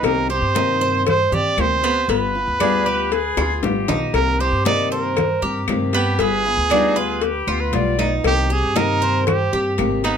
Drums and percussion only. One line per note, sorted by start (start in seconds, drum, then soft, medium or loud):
0.04 cowbell loud
0.04 high conga soft
0.04 claves medium
0.31 high conga soft
0.55 cowbell medium
0.55 high conga medium
0.82 high conga soft
1.07 cowbell loud
1.07 high conga soft
1.07 low conga medium
1.07 claves medium
1.33 high conga soft
1.33 low conga medium
1.58 cowbell medium
1.58 high conga medium
1.58 claves medium
1.84 cowbell medium
2.10 cowbell loud
2.10 high conga soft
2.36 high conga soft
2.60 cowbell medium
2.60 high conga medium
2.60 claves medium
2.87 high conga soft
3.12 cowbell loud
3.12 high conga soft
3.37 high bongo medium
3.37 high conga soft
3.37 claves medium
3.63 cowbell medium
3.63 low bongo medium
3.63 high conga medium
3.88 cowbell medium
3.88 low bongo loud
3.88 low conga medium
4.14 cowbell loud
4.14 high conga soft
4.14 claves medium
4.41 high conga soft
4.65 cowbell medium
4.65 high conga loud
4.93 high conga soft
5.17 cowbell loud
5.17 high conga soft
5.17 low conga medium
5.17 claves medium
5.44 high conga soft
5.68 cowbell medium
5.68 high conga medium
5.68 claves medium
5.93 cowbell medium
6.19 cowbell loud
6.19 high conga soft
6.46 high conga soft
6.70 cowbell medium
6.70 high conga medium
6.70 claves medium
6.97 high conga soft
7.21 cowbell loud
7.21 high conga soft
7.48 high conga soft
7.48 claves medium
7.73 cowbell medium
7.73 high conga medium
7.99 cowbell medium
7.99 high conga medium
8.24 cowbell loud
8.24 high conga soft
8.24 claves medium
8.51 high conga soft
8.76 cowbell medium
8.76 high conga loud
9.02 high conga soft
9.27 cowbell loud
9.27 high conga soft
9.27 low conga medium
9.27 claves medium
9.53 high conga soft
9.78 cowbell medium
9.78 high conga medium
9.78 claves medium
10.04 cowbell medium